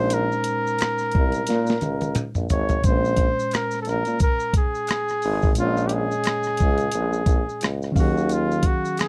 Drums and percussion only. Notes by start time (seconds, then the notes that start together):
0.10 closed hi-hat, maracas
0.32 maracas
0.44 closed hi-hat, maracas
0.67 maracas
0.79 finger snap, cross-stick, closed hi-hat, maracas
0.98 cross-stick, maracas
1.12 kick, closed hi-hat
1.32 closed hi-hat, maracas
1.47 snare, closed hi-hat, maracas
1.67 snare, maracas
1.81 closed hi-hat, high tom, maracas
2.01 closed hi-hat, high tom, maracas
2.15 finger snap, closed hi-hat, mid tom, maracas
2.35 mid tom, maracas
2.49 closed hi-hat, floor tom, maracas
2.69 closed hi-hat, floor tom, maracas
2.84 kick, closed hi-hat, maracas
3.05 maracas
3.17 kick, closed hi-hat
3.40 maracas
3.51 finger snap, cross-stick, closed hi-hat, maracas
3.71 cross-stick, maracas
3.85 closed hi-hat, maracas
3.89 cross-stick
4.05 closed hi-hat, maracas
4.20 kick, closed hi-hat, maracas
4.40 maracas
4.53 kick, closed hi-hat, maracas
4.75 maracas
4.87 finger snap, cross-stick, closed hi-hat, maracas
5.09 cross-stick, maracas
5.22 open hi-hat, maracas
5.42 kick, maracas
5.55 closed hi-hat, maracas
5.77 maracas
5.89 closed hi-hat
6.11 maracas
6.24 finger snap, cross-stick, closed hi-hat, maracas
6.43 cross-stick, maracas
6.57 kick, closed hi-hat, maracas
6.78 closed hi-hat, maracas
6.92 closed hi-hat, maracas
7.13 maracas
7.26 kick, closed hi-hat, maracas
7.49 maracas
7.61 finger snap, cross-stick, closed hi-hat, maracas
7.82 cross-stick, maracas
7.96 kick, open hi-hat, maracas
8.17 maracas
8.29 closed hi-hat, maracas
8.51 maracas
8.63 kick, closed hi-hat
8.85 maracas
8.97 finger snap, cross-stick, closed hi-hat, maracas